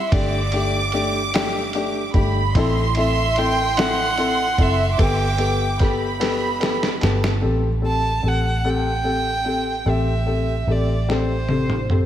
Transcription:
Already playing: violin E5, violin section C6
0.10 fingered electric bass G1, felt piano A3 D4 G4, violin D5, violin section D6, kick, ride
0.52 felt piano A3 D4 G4, ride
0.92 felt piano A3 D4 G4, ride
1.34 felt piano A3 D4 G4, snare, ride
1.73 felt piano A3 D4 G4, ride
2.14 fingered electric bass G1, felt piano A3 D4 G4, violin section B5, kick, ride
2.54 fingered electric bass A1, felt piano C4 E4 A4, violin section C6, kick, ride
2.95 felt piano C4 E4 A4, violin E5, ride
3.36 felt piano C4 E4 A4, violin G5, ride
3.77 felt piano C4 E4 A4, violin F#5, snare, ride
4.17 felt piano C4 E4 A4, ride
4.58 fingered electric bass F#1, felt piano C4 E4 A4, kick, ride
4.62 violin E5
4.97 fingered electric bass G1, felt piano B3 G4 A4, violin section D6, kick, ride
5.03 violin G5
5.37 felt piano B3 G4 A4, ride
5.79 felt piano B3 G4 A4, violin section B5, kick, snare, ride
6.20 felt piano B3 G4 A4, snare, ride
6.60 felt piano B3 G4 A4, snare, ride
6.83 snare
7.01 fingered electric bass G1, felt piano B3 G4 A4, violin section A5, snare, ride
7.24 snare
7.41 fingered electric bass A1, felt piano C4 G4 A4
7.82 felt piano C4 G4 A4
7.87 violin A5
8.23 fingered electric bass A1, felt piano C4 G4 A4
8.29 violin F#5
8.65 felt piano C4 G4 A4
8.70 violin G5
9.04 felt piano C4 G4 A4
9.45 felt piano C4 G4 A4
9.86 fingered electric bass A1, felt piano C4 G4 A4, violin E5
10.26 felt piano C4 G4 A4
10.67 fingered electric bass A1, felt piano C4 G4 A4
10.72 violin D5
11.08 felt piano C4 G4 A4, violin C5, snare
11.49 felt piano C4 G4 A4, high tom
11.70 mid tom
11.90 felt piano C4 G4 A4, mid tom

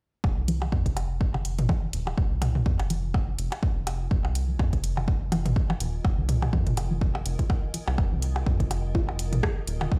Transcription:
0.24 analog synth bass F1, ambient pad F4, kick, percussion blips
0.38 analog synth bass C2
0.42 ambient pad A#4
0.48 synth arpeggio sound F3, closed hi-hat
0.62 percussion blips
0.72 analog synth bass F2, ambient pad G#5, kick
0.79 ambient pad D#5
0.86 analog synth bass F1, synth arpeggio sound F3, kick, closed hi-hat
0.97 closed hi-hat, percussion blips
1.21 kick
1.34 synth arpeggio sound D#3, percussion blips
1.45 closed hi-hat
1.58 analog synth bass G#1, closed hi-hat, mid tom
1.69 synth arpeggio sound F3, kick, percussion blips
1.93 analog synth bass D#1, closed hi-hat
2.07 synth arpeggio sound F3, percussion blips
2.18 analog synth bass F1, kick
2.31 analog synth bass C2
2.42 closed hi-hat, mid tom, percussion blips
2.55 synth arpeggio sound D#3, mid tom
2.66 analog synth bass F2, kick
2.79 analog synth bass F1, closed hi-hat, percussion blips
2.90 synth arpeggio sound F3, closed hi-hat
3.14 kick, percussion blips
3.28 synth arpeggio sound F3
3.38 analog synth bass F1, closed hi-hat
3.52 closed hi-hat, percussion blips
3.63 kick
3.76 analog synth bass F1, synth arpeggio sound D#3
3.87 closed hi-hat, percussion blips
4.11 analog synth bass F1, synth arpeggio sound F3, kick
4.25 analog synth bass C2, percussion blips
4.35 closed hi-hat
4.49 synth arpeggio sound F3
4.59 analog synth bass F2, kick, percussion blips
4.73 analog synth bass F1, kick, closed hi-hat
4.84 closed hi-hat
4.97 synth arpeggio sound D#3, percussion blips
5.08 kick
5.32 synth arpeggio sound F3, closed hi-hat, percussion blips
5.46 analog synth bass G#1, closed hi-hat, mid tom
5.56 kick
5.70 synth arpeggio sound F3, percussion blips
5.80 analog synth bass D#1, closed hi-hat
6.05 analog synth bass F1, kick, percussion blips
6.18 analog synth bass C2, synth arpeggio sound D#3
6.29 closed hi-hat, mid tom
6.42 mid tom, percussion blips
6.53 analog synth bass F2, synth arpeggio sound F3, kick
6.67 analog synth bass F1, closed hi-hat, mid tom
6.77 closed hi-hat, percussion blips
6.91 synth arpeggio sound F3
7.01 kick
7.15 percussion blips
7.26 analog synth bass F1, closed hi-hat
7.39 synth arpeggio sound F4, kick, closed hi-hat
7.50 kick, percussion blips
7.74 synth arpeggio sound F3, closed hi-hat
7.88 analog synth bass C2, percussion blips
7.98 analog synth bass F1, kick, percussion blips
8.12 analog synth bass C2, synth arpeggio sound F3
8.22 closed hi-hat
8.36 percussion blips
8.46 analog synth bass F2, ambient pad A#5, kick
8.60 analog synth bass F1, synth arpeggio sound D#3, kick, closed hi-hat
8.71 closed hi-hat, percussion blips
8.95 synth arpeggio sound F3, kick
9.09 percussion blips
9.19 closed hi-hat
9.33 analog synth bass G#1, synth arpeggio sound F3, closed hi-hat, mid tom
9.43 kick, cross-stick, percussion blips
9.67 analog synth bass D#1, closed hi-hat
9.81 synth arpeggio sound D#3, percussion blips
9.92 analog synth bass F1, kick

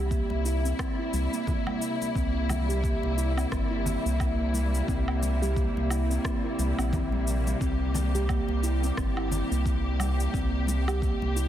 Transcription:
Already playing: sub bass C2, string section C3 G3 A#3 E4
0.11 steel tongue drum A#3, kick, cabasa
0.30 sub bass C2, muted conga
0.45 steel tongue drum E4, cabasa
0.65 steel tongue drum C4, cabasa
0.79 kick, cross-stick, cabasa, low woodblock
0.99 steel tongue drum E4
1.13 sub bass C2, high conga, cabasa
1.33 steel tongue drum A#3, cabasa
1.47 kick, low conga, cabasa
1.67 high conga, low woodblock
1.82 cabasa
2.02 muted conga, cabasa
2.15 sub bass C2, steel tongue drum C4, kick, cabasa
2.49 muted conga, high conga, low conga, cabasa, low woodblock
2.69 steel tongue drum G4, high conga, cabasa
2.83 steel tongue drum A#3, kick, cabasa
3.03 sub bass C2, muted conga, high conga
3.17 steel tongue drum E4, cabasa
3.37 steel tongue drum C4, cabasa, low woodblock
3.51 sub bass G1, steel tongue drum C4, kick, cross-stick, cabasa
3.71 steel tongue drum E4
3.86 low conga, cabasa
4.05 sub bass C2, steel tongue drum A#3, cabasa
4.20 steel tongue drum A#3, kick, cabasa, low woodblock
4.54 high conga, cabasa
4.75 cabasa
4.88 sub bass C2, steel tongue drum C4, kick, cabasa
5.08 low woodblock
5.23 muted conga, high conga, cabasa
5.42 steel tongue drum G4, high conga, cabasa
5.56 steel tongue drum A#3, kick, cabasa
5.76 sub bass C2, muted conga
5.90 steel tongue drum E4, cabasa, low woodblock
6.10 steel tongue drum C4, cabasa
6.24 steel tongue drum C4, kick, cross-stick, cabasa
6.44 steel tongue drum E4
6.59 sub bass C2, high conga, cabasa
6.78 sub bass A#1, steel tongue drum C4, cabasa, low woodblock
6.93 steel tongue drum C4, kick, low conga, cabasa
7.12 high conga
7.28 cabasa
7.47 muted conga, cabasa
7.61 sub bass C2, steel tongue drum C4, string section G4, kick, cabasa
7.94 muted conga, high conga, low conga, cabasa
8.15 steel tongue drum G4, high conga, cabasa
8.29 steel tongue drum A#3, kick, cabasa, low woodblock
8.48 sub bass C2, muted conga, high conga
8.63 steel tongue drum E4, cabasa
8.83 steel tongue drum C4, cabasa
8.97 sub bass G1, steel tongue drum C4, kick, cross-stick, cabasa
9.17 steel tongue drum E4, low woodblock
9.31 low conga, cabasa
9.51 sub bass C2, steel tongue drum A#3, cabasa
9.66 steel tongue drum A#3, kick, cabasa
10.00 high conga, cabasa, low woodblock
10.20 cabasa
10.34 sub bass C2, steel tongue drum C4, kick, cabasa
10.67 muted conga, high conga, cabasa
10.87 steel tongue drum G4, high conga, cabasa, low woodblock
11.02 steel tongue drum A#3, kick, cabasa
11.21 sub bass C2, muted conga
11.36 steel tongue drum E4, cabasa

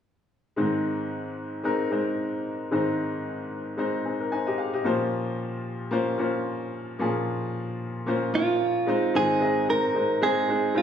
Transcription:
0.56 upright piano G#2 D#3 G#3 C4 D#4 C5
1.63 upright piano G#3 C4 D#4 A#4
1.91 upright piano G#3 C4 D#4 C5
2.71 upright piano G#2 D#3 G#3 C4 D#4 C5
3.77 upright piano G#3 C4 D#4 C5
4.05 upright piano C4 G#4
4.20 upright piano A#4
4.32 upright piano D#4 C5 G#5
4.47 upright piano G4 D#5
4.58 upright piano G#4 F5
4.73 upright piano G4 D#5
4.84 upright piano A#2 F3 A#3 C#4 F4 C5
5.91 upright piano A#3 C#4 F4 C5
6.18 upright piano A#3 C#4 F4 C5
6.99 upright piano A#2 F3 A#3 C#4 F4 G#4
8.06 upright piano A#3 C#4 F4 C5
8.33 upright piano A#3 C#4 F4 C#5, clean electric guitar F4
8.87 upright piano G#3 C4 D#4 C5
9.14 upright piano G#2 D#3 G#3 C4 D#4 C5, clean electric guitar G#4
9.40 upright piano G#3 C4 D#4 D#5
9.68 upright piano G#3 C4 D#4 C5, clean electric guitar A#4
9.95 upright piano G#3 C4 D#4 C5
10.21 upright piano G#3 C4 D#4 C5, clean electric guitar G#4
10.48 upright piano G#3 C4 D#4 C5
10.74 upright piano G#3 C4 D#4 C5, clean electric guitar F4

